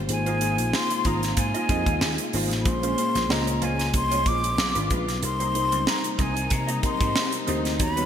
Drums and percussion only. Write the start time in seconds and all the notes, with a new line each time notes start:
0.09 closed hi-hat
0.26 closed hi-hat
0.41 closed hi-hat
0.58 closed hi-hat
0.73 snare
0.90 closed hi-hat
1.05 kick, closed hi-hat
1.23 snare, closed hi-hat
1.37 kick, closed hi-hat
1.55 closed hi-hat
1.69 kick, closed hi-hat
1.86 kick, closed hi-hat
2.01 snare
2.18 closed hi-hat
2.33 open hi-hat
2.51 snare, closed hi-hat
2.65 kick, closed hi-hat
2.83 closed hi-hat
2.98 closed hi-hat
3.15 snare, closed hi-hat
3.30 snare
3.47 closed hi-hat
3.62 closed hi-hat
3.80 snare, closed hi-hat
3.94 kick, closed hi-hat
4.12 closed hi-hat
4.26 kick, closed hi-hat
4.44 closed hi-hat
4.58 snare
4.75 closed hi-hat
4.90 kick, closed hi-hat
5.08 snare, closed hi-hat
5.23 closed hi-hat
5.40 closed hi-hat
5.55 closed hi-hat
5.72 closed hi-hat
5.87 snare
6.04 closed hi-hat
6.19 kick, closed hi-hat
6.37 closed hi-hat
6.50 kick, closed hi-hat
6.68 closed hi-hat
6.83 kick, closed hi-hat
7.01 kick, closed hi-hat
7.16 snare
7.32 closed hi-hat
7.47 closed hi-hat
7.65 snare, closed hi-hat
7.80 kick, closed hi-hat
7.97 closed hi-hat